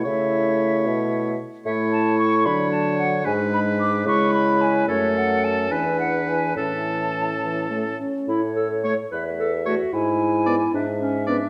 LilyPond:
<<
  \new Staff \with { instrumentName = "Flute" } { \time 6/8 \key a \major \tempo 4. = 74 e''2~ e''8 r8 | e''8 a''8 cis'''8 b''8 a''8 fis''8 | gis''8 b''8 d'''8 cis'''8 b''8 gis''8 | cis''8 fis''8 a''8 gis''8 fis''8 gis''8 |
a''2~ a''8 r8 | cis''4. e''4. | gis''4. e''4. | }
  \new Staff \with { instrumentName = "Oboe" } { \time 6/8 \key a \major cis''2~ cis''8 r8 | cis''4. cis''4. | b'4. b'4. | a'4. b'4. |
a'2~ a'8 r8 | r4 cis''16 r4 r16 cis''16 r16 | r4 d''16 r4 r16 d''16 r16 | }
  \new Staff \with { instrumentName = "Clarinet" } { \time 6/8 \key a \major e'2~ e'8 r8 | e'4. d'4. | d'4. e'4. | cis'4. d'4. |
cis'2~ cis'8 r8 | e'8 a'8 cis''8 b'8 a'8 fis'8 | e'4. d'8 cis'8 d'8 | }
  \new Staff \with { instrumentName = "French horn" } { \time 6/8 \key a \major a2~ a8 r8 | a4. fis4. | gis4. gis4. | a4. e4. |
e4. e8 a8 cis'8 | r4 a16 r4 r16 a16 r16 | r4 b16 r4 r16 b16 r16 | }
  \new Staff \with { instrumentName = "Bassoon" } { \clef bass \time 6/8 \key a \major cis4. b,4 r8 | a,4. d4. | gis,4. cis4. | fis,4. e,4. |
a,2~ a,8 r8 | a,4. e,4. | gis,4. gis,4. | }
>>